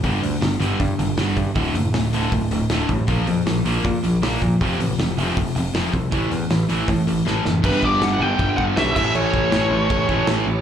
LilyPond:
<<
  \new Staff \with { instrumentName = "Lead electric guitar" } { \time 4/4 \key g \lydian \tempo 4 = 158 r1 | r1 | r1 | r1 |
r1 | b'8 d''8 fis''8 g''4 fis''8 e''8 e''8 | cis''2. r4 | }
  \new Staff \with { instrumentName = "Distorted electric guitar" } { \clef bass \time 4/4 \key g \lydian <g, d g>8 <g, d>8 <g, d>8 <g, d g>8 <g, d>8 <g, d>8 <g, d g>8 <g, d>8 | <d, a, d>8 <d, a,>8 <d, a,>8 <d, a, d>8 <d, a,>8 <d, a,>8 <d, a, d>8 <d, a,>8 | <bes, f bes>8 <bes, f>8 <bes, f>8 <bes, f bes>8 <bes, f>8 <bes, f>8 <bes, f bes>8 <bes, f>8 | <f, c f>8 <f, c>8 <f, c>8 <f, c f>8 <f, c>8 <f, c>8 <f, c f>8 <f, c>8 |
<a, e a>8 <a, e>8 <a, e>8 <a, e a>8 <a, e>8 <a, e>8 <a, e a>8 <a, e>8 | <g, d g>4. <g, d g>4. <g, d g>8 <a, e a>8~ | <a, e a>4 <a, e a>4. <a, e a>4 r8 | }
  \new Staff \with { instrumentName = "Distorted electric guitar" } { \clef bass \time 4/4 \key g \lydian <g, d g>8 <g, d>8 <g, d>8 <g, d g>8 <g, d>8 <g, d>8 <g, d g>8 <g, d>8 | <d, a, d>8 <d, a,>8 <d, a,>8 <d, a, d>8 <d, a,>8 <d, a,>8 <d, a, d>8 <d, a,>8 | <bes, f bes>8 <bes, f>8 <bes, f>8 <bes, f bes>8 <bes, f>8 <bes, f>8 <bes, f bes>8 <bes, f>8 | <f, c f>8 <f, c>8 <f, c>8 <f, c f>8 <f, c>8 <f, c>8 <f, c f>8 <f, c>8 |
<a, e a>8 <a, e>8 <a, e>8 <a, e a>8 <a, e>8 <a, e>8 <a, e a>8 <a, e>8 | <g, d g>4. <g, d g>4. <g, d g>8 <a, e a>8~ | <a, e a>4 <a, e a>4. <a, e a>4 r8 | }
  \new Staff \with { instrumentName = "Picked electric bass" } { \clef bass \time 4/4 \key g \lydian g,,8 d,8 g,,8 g,,8 g,8 g,,8 g,,8 g,8 | d,,8 fis,,8 d,,8 d,,8 d,,8 d,,8 d,,8 a,,8 | bes,,8 f,8 bes,,8 bes,,8 bes,8 bes,,8 bes,,8 bes,8 | f,,8 a,,8 f,,8 f,,8 f,,8 f,,8 f,,8 c,8 |
a,,8 e,8 a,,8 a,,8 a,8 a,,8 a,,8 fis,,8 | g,,4 g,,8 g,,8 g,,8 g,,8 b,,8 a,,8 | a,,4 a,,8 a,,8 a,,8 a,,8 a,,8 a,,8 | }
  \new DrumStaff \with { instrumentName = "Drums" } \drummode { \time 4/4 <hho bd>8 hho8 <hho sn>8 hho8 <hho bd>8 hho8 <hho sn>8 <hho bd>8 | <hho bd>8 hho8 <hho sn>8 hho8 <hho bd>8 hho8 <hho sn>8 <hho bd>8 | <hho bd>8 hho8 <hho sn>8 hho8 <hho bd>8 hho8 <hho sn>8 <hho bd>8 | <hho bd>8 hho8 <hho sn>8 hho8 <hho bd>8 hho8 <hho sn>8 <hho bd>8 |
<hho bd>8 hho8 <hho sn>8 hho8 <hho bd>8 hho8 sn8 sn8 | <cymc bd>8 bd8 <cymc sn>4 <cymc bd>8 bd8 <cymc sn>8 <cymc bd>8 | cymc8 bd8 <cymc sn>4 <cymc bd>8 bd8 <cymc sn>4 | }
>>